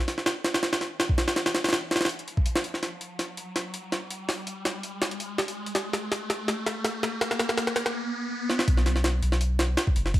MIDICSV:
0, 0, Header, 1, 4, 480
1, 0, Start_track
1, 0, Tempo, 365854
1, 1787, Time_signature, 4, 2, 24, 8
1, 13381, End_track
2, 0, Start_track
2, 0, Title_t, "Sub bass"
2, 0, Program_c, 0, 38
2, 11384, Note_on_c, 0, 35, 99
2, 12087, Note_off_c, 0, 35, 0
2, 12103, Note_on_c, 0, 35, 80
2, 12807, Note_off_c, 0, 35, 0
2, 13064, Note_on_c, 0, 30, 94
2, 13381, Note_off_c, 0, 30, 0
2, 13381, End_track
3, 0, Start_track
3, 0, Title_t, "Riser"
3, 0, Program_c, 1, 103
3, 0, Note_on_c, 1, 60, 80
3, 11385, Note_off_c, 1, 60, 0
3, 13381, End_track
4, 0, Start_track
4, 0, Title_t, "Drums"
4, 104, Note_on_c, 9, 38, 51
4, 104, Note_on_c, 9, 46, 72
4, 234, Note_off_c, 9, 38, 0
4, 234, Note_on_c, 9, 38, 48
4, 235, Note_off_c, 9, 46, 0
4, 343, Note_off_c, 9, 38, 0
4, 343, Note_on_c, 9, 38, 112
4, 343, Note_on_c, 9, 46, 81
4, 474, Note_off_c, 9, 38, 0
4, 474, Note_off_c, 9, 46, 0
4, 584, Note_on_c, 9, 38, 103
4, 584, Note_on_c, 9, 46, 79
4, 714, Note_off_c, 9, 38, 0
4, 714, Note_off_c, 9, 46, 0
4, 714, Note_on_c, 9, 38, 108
4, 714, Note_on_c, 9, 46, 77
4, 824, Note_off_c, 9, 38, 0
4, 824, Note_off_c, 9, 46, 0
4, 824, Note_on_c, 9, 38, 99
4, 824, Note_on_c, 9, 46, 77
4, 954, Note_off_c, 9, 38, 0
4, 954, Note_off_c, 9, 46, 0
4, 954, Note_on_c, 9, 38, 104
4, 954, Note_on_c, 9, 46, 80
4, 1064, Note_off_c, 9, 38, 0
4, 1064, Note_off_c, 9, 46, 0
4, 1064, Note_on_c, 9, 38, 54
4, 1064, Note_on_c, 9, 46, 67
4, 1195, Note_off_c, 9, 38, 0
4, 1195, Note_off_c, 9, 46, 0
4, 1307, Note_on_c, 9, 38, 108
4, 1307, Note_on_c, 9, 46, 85
4, 1433, Note_on_c, 9, 36, 94
4, 1438, Note_off_c, 9, 38, 0
4, 1438, Note_off_c, 9, 46, 0
4, 1547, Note_on_c, 9, 38, 102
4, 1547, Note_on_c, 9, 46, 81
4, 1565, Note_off_c, 9, 36, 0
4, 1675, Note_off_c, 9, 38, 0
4, 1675, Note_off_c, 9, 46, 0
4, 1675, Note_on_c, 9, 38, 100
4, 1675, Note_on_c, 9, 46, 78
4, 1787, Note_off_c, 9, 38, 0
4, 1787, Note_off_c, 9, 46, 0
4, 1787, Note_on_c, 9, 38, 102
4, 1787, Note_on_c, 9, 46, 78
4, 1915, Note_off_c, 9, 38, 0
4, 1915, Note_off_c, 9, 46, 0
4, 1915, Note_on_c, 9, 38, 103
4, 1915, Note_on_c, 9, 46, 77
4, 2028, Note_off_c, 9, 38, 0
4, 2028, Note_off_c, 9, 46, 0
4, 2028, Note_on_c, 9, 38, 104
4, 2028, Note_on_c, 9, 46, 84
4, 2156, Note_off_c, 9, 38, 0
4, 2156, Note_off_c, 9, 46, 0
4, 2156, Note_on_c, 9, 38, 85
4, 2156, Note_on_c, 9, 46, 64
4, 2212, Note_off_c, 9, 38, 0
4, 2212, Note_off_c, 9, 46, 0
4, 2212, Note_on_c, 9, 38, 89
4, 2212, Note_on_c, 9, 46, 66
4, 2266, Note_off_c, 9, 38, 0
4, 2266, Note_off_c, 9, 46, 0
4, 2266, Note_on_c, 9, 38, 115
4, 2266, Note_on_c, 9, 46, 86
4, 2397, Note_off_c, 9, 38, 0
4, 2397, Note_off_c, 9, 46, 0
4, 2508, Note_on_c, 9, 38, 91
4, 2508, Note_on_c, 9, 46, 67
4, 2569, Note_off_c, 9, 38, 0
4, 2569, Note_off_c, 9, 46, 0
4, 2569, Note_on_c, 9, 38, 93
4, 2569, Note_on_c, 9, 46, 67
4, 2633, Note_off_c, 9, 38, 0
4, 2633, Note_off_c, 9, 46, 0
4, 2633, Note_on_c, 9, 38, 86
4, 2633, Note_on_c, 9, 46, 69
4, 2691, Note_off_c, 9, 38, 0
4, 2691, Note_off_c, 9, 46, 0
4, 2691, Note_on_c, 9, 38, 92
4, 2691, Note_on_c, 9, 46, 69
4, 2746, Note_off_c, 9, 46, 0
4, 2746, Note_on_c, 9, 46, 91
4, 2822, Note_off_c, 9, 38, 0
4, 2875, Note_on_c, 9, 42, 46
4, 2877, Note_off_c, 9, 46, 0
4, 2988, Note_on_c, 9, 46, 66
4, 3006, Note_off_c, 9, 42, 0
4, 3114, Note_on_c, 9, 36, 86
4, 3119, Note_off_c, 9, 46, 0
4, 3224, Note_on_c, 9, 46, 86
4, 3245, Note_off_c, 9, 36, 0
4, 3353, Note_on_c, 9, 38, 110
4, 3355, Note_off_c, 9, 46, 0
4, 3465, Note_on_c, 9, 46, 66
4, 3484, Note_off_c, 9, 38, 0
4, 3595, Note_on_c, 9, 38, 37
4, 3596, Note_off_c, 9, 46, 0
4, 3708, Note_off_c, 9, 38, 0
4, 3708, Note_on_c, 9, 38, 48
4, 3708, Note_on_c, 9, 46, 86
4, 3840, Note_off_c, 9, 38, 0
4, 3840, Note_off_c, 9, 46, 0
4, 3948, Note_on_c, 9, 46, 67
4, 4079, Note_off_c, 9, 46, 0
4, 4186, Note_on_c, 9, 38, 49
4, 4186, Note_on_c, 9, 46, 84
4, 4318, Note_off_c, 9, 38, 0
4, 4318, Note_off_c, 9, 46, 0
4, 4426, Note_on_c, 9, 46, 66
4, 4557, Note_off_c, 9, 46, 0
4, 4667, Note_on_c, 9, 38, 53
4, 4667, Note_on_c, 9, 46, 90
4, 4799, Note_off_c, 9, 38, 0
4, 4799, Note_off_c, 9, 46, 0
4, 4904, Note_on_c, 9, 46, 78
4, 5035, Note_off_c, 9, 46, 0
4, 5147, Note_on_c, 9, 38, 56
4, 5147, Note_on_c, 9, 46, 60
4, 5278, Note_off_c, 9, 38, 0
4, 5278, Note_off_c, 9, 46, 0
4, 5386, Note_on_c, 9, 46, 79
4, 5517, Note_off_c, 9, 46, 0
4, 5624, Note_on_c, 9, 38, 54
4, 5624, Note_on_c, 9, 46, 81
4, 5755, Note_off_c, 9, 38, 0
4, 5755, Note_off_c, 9, 46, 0
4, 5863, Note_on_c, 9, 46, 71
4, 5995, Note_off_c, 9, 46, 0
4, 6103, Note_on_c, 9, 38, 61
4, 6103, Note_on_c, 9, 46, 88
4, 6234, Note_off_c, 9, 38, 0
4, 6234, Note_off_c, 9, 46, 0
4, 6342, Note_on_c, 9, 46, 67
4, 6473, Note_off_c, 9, 46, 0
4, 6581, Note_on_c, 9, 38, 68
4, 6581, Note_on_c, 9, 46, 88
4, 6709, Note_on_c, 9, 42, 46
4, 6712, Note_off_c, 9, 38, 0
4, 6712, Note_off_c, 9, 46, 0
4, 6823, Note_on_c, 9, 46, 76
4, 6840, Note_off_c, 9, 42, 0
4, 6954, Note_off_c, 9, 46, 0
4, 7064, Note_on_c, 9, 38, 69
4, 7064, Note_on_c, 9, 46, 62
4, 7191, Note_off_c, 9, 46, 0
4, 7191, Note_on_c, 9, 46, 77
4, 7195, Note_off_c, 9, 38, 0
4, 7323, Note_off_c, 9, 46, 0
4, 7432, Note_on_c, 9, 46, 60
4, 7544, Note_off_c, 9, 46, 0
4, 7544, Note_on_c, 9, 38, 72
4, 7544, Note_on_c, 9, 46, 86
4, 7675, Note_off_c, 9, 38, 0
4, 7675, Note_off_c, 9, 46, 0
4, 7786, Note_on_c, 9, 38, 79
4, 7786, Note_on_c, 9, 46, 70
4, 7917, Note_off_c, 9, 38, 0
4, 7917, Note_off_c, 9, 46, 0
4, 8024, Note_on_c, 9, 38, 74
4, 8024, Note_on_c, 9, 46, 91
4, 8156, Note_off_c, 9, 38, 0
4, 8156, Note_off_c, 9, 46, 0
4, 8264, Note_on_c, 9, 38, 80
4, 8264, Note_on_c, 9, 46, 78
4, 8395, Note_off_c, 9, 38, 0
4, 8395, Note_off_c, 9, 46, 0
4, 8503, Note_on_c, 9, 38, 83
4, 8503, Note_on_c, 9, 46, 81
4, 8634, Note_off_c, 9, 38, 0
4, 8634, Note_off_c, 9, 46, 0
4, 8743, Note_on_c, 9, 38, 82
4, 8743, Note_on_c, 9, 46, 67
4, 8874, Note_off_c, 9, 38, 0
4, 8874, Note_off_c, 9, 46, 0
4, 8981, Note_on_c, 9, 38, 86
4, 8981, Note_on_c, 9, 46, 91
4, 9112, Note_off_c, 9, 38, 0
4, 9112, Note_off_c, 9, 46, 0
4, 9225, Note_on_c, 9, 38, 87
4, 9225, Note_on_c, 9, 46, 63
4, 9356, Note_off_c, 9, 38, 0
4, 9356, Note_off_c, 9, 46, 0
4, 9463, Note_on_c, 9, 38, 96
4, 9463, Note_on_c, 9, 46, 80
4, 9591, Note_off_c, 9, 38, 0
4, 9591, Note_on_c, 9, 38, 83
4, 9594, Note_off_c, 9, 46, 0
4, 9702, Note_off_c, 9, 38, 0
4, 9702, Note_on_c, 9, 38, 93
4, 9702, Note_on_c, 9, 46, 67
4, 9829, Note_off_c, 9, 38, 0
4, 9829, Note_on_c, 9, 38, 88
4, 9834, Note_off_c, 9, 46, 0
4, 9939, Note_off_c, 9, 38, 0
4, 9939, Note_on_c, 9, 38, 97
4, 9939, Note_on_c, 9, 46, 87
4, 10066, Note_off_c, 9, 38, 0
4, 10066, Note_on_c, 9, 38, 85
4, 10070, Note_off_c, 9, 46, 0
4, 10180, Note_off_c, 9, 38, 0
4, 10180, Note_on_c, 9, 38, 96
4, 10180, Note_on_c, 9, 46, 80
4, 10310, Note_off_c, 9, 38, 0
4, 10310, Note_on_c, 9, 38, 91
4, 10311, Note_off_c, 9, 46, 0
4, 10442, Note_off_c, 9, 38, 0
4, 11146, Note_on_c, 9, 38, 62
4, 11270, Note_off_c, 9, 38, 0
4, 11270, Note_on_c, 9, 38, 77
4, 11384, Note_on_c, 9, 36, 110
4, 11384, Note_on_c, 9, 46, 86
4, 11402, Note_off_c, 9, 38, 0
4, 11512, Note_on_c, 9, 38, 46
4, 11515, Note_off_c, 9, 46, 0
4, 11516, Note_off_c, 9, 36, 0
4, 11624, Note_off_c, 9, 38, 0
4, 11624, Note_on_c, 9, 38, 50
4, 11624, Note_on_c, 9, 46, 69
4, 11751, Note_off_c, 9, 38, 0
4, 11751, Note_on_c, 9, 38, 50
4, 11756, Note_off_c, 9, 46, 0
4, 11863, Note_off_c, 9, 38, 0
4, 11863, Note_on_c, 9, 38, 114
4, 11863, Note_on_c, 9, 46, 89
4, 11994, Note_off_c, 9, 38, 0
4, 11994, Note_off_c, 9, 46, 0
4, 12104, Note_on_c, 9, 46, 70
4, 12231, Note_on_c, 9, 38, 56
4, 12235, Note_off_c, 9, 46, 0
4, 12344, Note_on_c, 9, 46, 89
4, 12362, Note_off_c, 9, 38, 0
4, 12475, Note_off_c, 9, 46, 0
4, 12584, Note_on_c, 9, 38, 108
4, 12584, Note_on_c, 9, 46, 80
4, 12715, Note_off_c, 9, 38, 0
4, 12715, Note_off_c, 9, 46, 0
4, 12822, Note_on_c, 9, 38, 114
4, 12822, Note_on_c, 9, 46, 91
4, 12953, Note_off_c, 9, 38, 0
4, 12953, Note_off_c, 9, 46, 0
4, 12953, Note_on_c, 9, 36, 93
4, 13066, Note_on_c, 9, 46, 70
4, 13084, Note_off_c, 9, 36, 0
4, 13195, Note_on_c, 9, 38, 46
4, 13197, Note_off_c, 9, 46, 0
4, 13306, Note_on_c, 9, 36, 113
4, 13306, Note_on_c, 9, 46, 83
4, 13326, Note_off_c, 9, 38, 0
4, 13381, Note_off_c, 9, 36, 0
4, 13381, Note_off_c, 9, 46, 0
4, 13381, End_track
0, 0, End_of_file